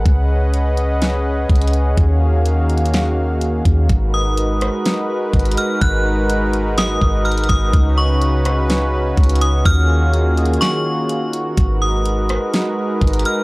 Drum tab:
HH |x-----------------------x-----------x-----------x-----------------------x--x--x--x--x-----------|x-----------------------x-----------x---x---x---x-----------------------x-----------x-----------|x-----------------------x-----------x-----------x-----------------------x--x--x--x--x-----------|x-----------------------x-----------x-----------x-----------------------x--x--x--x--x-----------|
SD |------------------------------------------------o-----------------------------------------------|------------------------------------------------o-----------------------------------------------|------------------------------------r-----------o-----------------------------------------------|------------------------------------------------o-----------------------------------------------|
BD |o-----------------------------------------------------------------------o-----------------------|o-----------------------------------------------------------------------------------o-----------|o-----------------------------------------------------------------------o-----------------------|o-----------------------------------------------------------o-----------------------o-----------|

HH |x-----------------------x-----------x-----------x-----------------------x--x--x--x--x-----------|x-----------------------x-----------x---x---x---x-----------------------x-----------x-----------|x-----------------------x-----------x-----------x-----------------------x--x--x--x--x-----------|
SD |------------------------------------r-----------o-----------------------------------------------|------------------------------------------------o-----------------------------------------------|------------------------------------r-----------o-----------------------------------------------|
BD |o-----------------------------------------------------------------------o-----------------------|o-----------------------------------------------------------------------------------------------|o-----------------------------------------------------------------------o-----------------------|